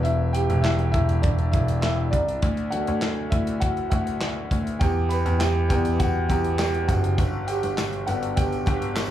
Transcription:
Already playing: E1 E3 G3 B3
0.03 E4 E5, closed hi-hat
0.33 G4 G5, closed hi-hat
0.50 E1, closed hi-hat
0.62 E4 E5, snare, clap
0.79 closed hi-hat
0.92 E1 E4 E5, kick, closed hi-hat
1.09 closed hi-hat
1.22 D4 D5, kick, closed hi-hat
1.39 closed hi-hat
1.52 E1 E4 E5, kick, closed hi-hat
1.68 closed hi-hat
1.81 E4 E5, snare, clap
2.11 C2 D4 D5, kick, closed hi-hat
2.28 closed hi-hat
2.42 D2, kick, closed hi-hat
2.57 closed hi-hat
2.71 D3 F#3 A3 F#4 F#5, closed hi-hat
2.87 D2, closed hi-hat
3.02 snare, clap
3.30 D2 E4 E5, kick, closed hi-hat
3.47 closed hi-hat
3.60 F#4 F#5, kick, closed hi-hat
3.77 closed hi-hat
3.90 D2 F#4 F#5, kick, closed hi-hat
4.07 closed hi-hat
4.21 snare, clap
4.51 D2, kick, closed hi-hat
4.67 closed hi-hat
4.79 E2 G4 G5, kick, closed hi-hat, tambourine
5.09 B4 B5, closed hi-hat, tambourine
5.25 E2, closed hi-hat, tambourine
5.39 G4 G5, snare, clap, tambourine
5.69 E2 E3 G3 B3 G4 G5, kick, closed hi-hat, tambourine
5.85 closed hi-hat, tambourine
5.99 F#4 F#5, kick, closed hi-hat, tambourine
6.28 E2 G4 G5, kick, closed hi-hat, tambourine
6.44 closed hi-hat
6.59 G4 G5, snare, clap, tambourine
6.75 closed hi-hat
6.88 F#1 F#4 F#5, kick, closed hi-hat, tambourine
7.04 closed hi-hat
7.18 G1, kick, closed hi-hat, tambourine
7.47 G4 G5, closed hi-hat, tambourine
7.63 G1, closed hi-hat, tambourine
7.78 snare, clap, tambourine
7.93 closed hi-hat
8.07 G1 D3 G3 B3 F#4 F#5, closed hi-hat, tambourine
8.23 closed hi-hat
8.36 G4 G5, kick, closed hi-hat, tambourine
8.52 closed hi-hat, tambourine
8.66 G1 G4 G5, kick, closed hi-hat, tambourine
8.82 closed hi-hat
8.96 snare, clap, tambourine

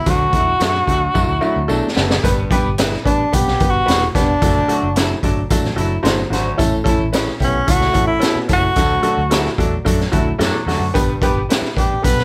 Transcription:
Already playing: E4
0.06 D2 F#3 A3 D4 F#4, kick, closed hi-hat, tambourine
0.33 E2 D3 F#3 A3 D4 E4 F#4, kick, closed hi-hat, tambourine
0.59 F#2 D3 F#3 A3 D4 F#4, snare, closed hi-hat, tambourine
0.86 D2 D3 F#3 A3 D4 F#4, kick, closed hi-hat, tambourine
1.14 F#2 F#3 A3 D4 E4 F#4, kick, tambourine
1.28 D2
1.41 F#3 A3 D4 E4, tambourine
1.56 D2
1.68 B1 E2 F#3 A3 D4 A4, tambourine
1.96 F#1 D2 F#3 A3 B3 D4 A4, snare, tambourine
2.10 snare
2.23 G1 G2 G3 B3 D4 G4 B4, kick, closed hi-hat, tambourine
2.51 G3 B3 D4 G4 B4, kick, closed hi-hat, tambourine
2.65 G1
2.78 G3 B3 D4 E4 G4 B4, snare, closed hi-hat, tambourine
2.93 snare
3.05 A1 G3 B3 D4 G4 B4, kick, closed hi-hat, tambourine
3.32 B1 G3 B3 D4 G4 B4, kick, closed hi-hat, tambourine
3.48 snare
3.60 G1 G3 B3 D4 G4 B4, kick, closed hi-hat, tambourine
3.70 F#4
3.86 E1 A2 G3 B3 D4 G4 B4, snare, closed hi-hat, tambourine
4.14 F1 G2 G3 B3 D4 G4 B4, kick, snare, closed hi-hat, tambourine
4.41 F#1 D2 F#3 A3 D4 F#4 A4, kick, closed hi-hat, tambourine
4.68 F#3 A3 D4 F#4 A4, closed hi-hat, tambourine
4.83 F#1
4.96 F#3 A3 D4 E4 F#4 A4, snare, closed hi-hat, tambourine
5.23 G1 F#3 A3 D4 F#4 A4, kick, closed hi-hat, tambourine
5.50 A1 F#3 A3 D4 F#4 A4, kick, closed hi-hat, tambourine
5.65 snare
5.76 F#1 F#3 A3 D4 E4 F#4 A4, closed hi-hat, tambourine
6.03 G1 E2 F#3 A3 D4 F#4 C5, snare, closed hi-hat, tambourine
6.30 G#1 D2 F#3 A3 D4 F#4 C5, snare, closed hi-hat, tambourine
6.57 A1 A2 E3 A3 C#4 E4 A4, kick, closed hi-hat, tambourine
6.84 E3 A3 C#4 E4 A4, kick, closed hi-hat, tambourine
6.99 A1
7.12 E3 A3 C#4 E4 B4, snare, closed hi-hat, tambourine
7.28 snare
7.40 B1 E3 A3 B3 C#4 E4 G4, kick, closed hi-hat, tambourine
7.66 C#2 E3 A3 C#4 E4 F#4 A4, kick, closed hi-hat, tambourine
7.81 snare
7.93 A1 E3 A3 C#4 E4 A4, kick, closed hi-hat, tambourine
8.07 E4
8.19 B2 E3 A3 C#4 E4 A4, snare, closed hi-hat, tambourine
8.35 muted fingered electric bass stroke
8.48 F#1 A2 E3 A3 C#4 E4 A4, kick, snare, closed hi-hat, tambourine
8.53 F#4
8.76 D2 F#3 A3 D4 F#4 A4, kick, closed hi-hat, tambourine
9.02 F#3 A3 D4 F#4 A4, closed hi-hat, tambourine
9.17 D2
9.30 F#3 A3 D4 E4 F#4 A4, snare, closed hi-hat, tambourine
9.46 snare
9.58 E2 D3 F#3 A3 D4 F#4 A4, kick, closed hi-hat, tambourine
9.85 F#2 D3 F#3 A3 D4 F#4 A4, kick, closed hi-hat, tambourine
10.01 snare
10.12 D2 D3 F#3 A3 D4 E4 F#4 A4, kick, closed hi-hat, tambourine
10.38 E2 F#2 F#3 A3 D4 F#4 A4, snare, closed hi-hat, tambourine
10.66 D2 E2 F#3 A3 D4 F#4 A4, snare, open hi-hat, tambourine
10.80 F#2
10.94 G1 G2 G3 B3 D4 G4 B4, kick, closed hi-hat, tambourine
11.22 G3 B3 D4 G4 B4, kick, closed hi-hat, tambourine
11.34 G1
11.49 G3 B3 D4 E4 G4 B4, snare, closed hi-hat, tambourine
11.62 muted fingered electric bass stroke, snare
11.76 A1 G3 B3 D4 G4 B4, kick, closed hi-hat, tambourine
12.02 B1 G3 B3 D4 G4 A4 B4, kick, closed hi-hat, tambourine
12.18 snare

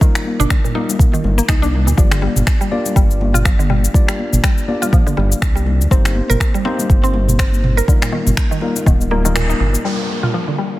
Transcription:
0.01 D#3 G3 A#3 D#4 F4 A#4, kick, low conga, shaker
0.15 finger snap, shaker
0.25 high conga
0.40 G1 D4, mid tom, shaker
0.50 D3, finger snap, kick, shaker
0.64 A#2, shaker
0.75 G3 A#3 D#4 F4 A#4, high conga
0.89 low conga, shaker
0.99 kick, mid tom, high conga, shaker
1.13 D#3, shaker
1.24 G1, high conga, low conga
1.38 A#3, shaker
1.48 C2 D#4, finger snap, kick, shaker
1.62 D4, high conga, shaker
1.74 low conga
1.87 D2 A#2, shaker
1.97 G1 F3 A#3 D4 F4 G4 D5, kick, low conga, shaker
2.11 D3, finger snap, shaker
2.22 G3, high conga
2.36 G1, mid tom, shaker
2.47 finger snap, kick, shaker
2.61 G3, shaker
2.72 A#3 D4 F4 G4 D5, high conga
2.85 low conga, shaker
2.96 G1 G3, kick, shaker
3.11 shaker
3.21 high conga, low conga
3.34 F4, mid tom, shaker
3.45 F3, finger snap, kick, shaker
3.59 D3, high conga, shaker
3.70 G3, mid tom
3.84 shaker
3.94 A#3 D4 F4 G4 D5, kick, low conga, shaker
4.08 G3, finger snap, shaker
4.19 high conga
4.33 G1, mid tom, shaker
4.43 G3, finger snap, kick, shaker
4.58 shaker
4.68 A#3 D4 F4 G4 D5, high conga
4.82 F4, low conga, shaker
4.93 F3, kick, mid tom, high conga, shaker
5.07 D3, shaker
5.17 G1 G3, high conga, low conga
5.32 shaker
5.42 C2, finger snap, kick, shaker
5.55 G3, high conga, shaker
5.67 low conga
5.81 D2, shaker
5.91 G1 A#3 C4 D#4 G4 C5, kick, low conga, shaker
6.05 finger snap, shaker
6.16 high conga
6.30 G1 A#4, mid tom, shaker
6.40 A#3, finger snap, kick, shaker
6.54 G3, shaker
6.65 A#3 C4 D#4 G4 C5, high conga
6.79 low conga, shaker
6.90 G1, kick, shaker
7.03 C4, shaker
7.14 high conga, low conga
7.28 mid tom, shaker
7.39 C4, finger snap, kick, shaker
7.52 high conga, shaker
7.64 mid tom
7.77 A#4, shaker
7.88 D3 G3 A#3 D#4 F4 A#4, kick, low conga, shaker
8.02 A#2, finger snap, shaker
8.12 D#3, high conga
8.27 G1, mid tom, shaker
8.37 finger snap, kick, shaker
8.51 D#3, shaker
8.61 G3 A#3 D#4 F4 A#4, high conga
8.76 low conga, shaker
8.86 D1 D#3, kick, mid tom, high conga, shaker
9.01 shaker
9.11 G3 A#3 D#4 F4 A#4, high conga, low conga
9.25 D#3 G3 A#3 D#4 F4 A#4, shaker
9.36 A#2, finger snap, shaker
9.49 D#4, high conga, shaker
9.60 G1 A#2, low conga
9.75 shaker
9.85 G3 A#3 D4 F4 A#4, downlifter
10.23 F4, mid tom
10.34 F3
10.48 D3
10.58 G3

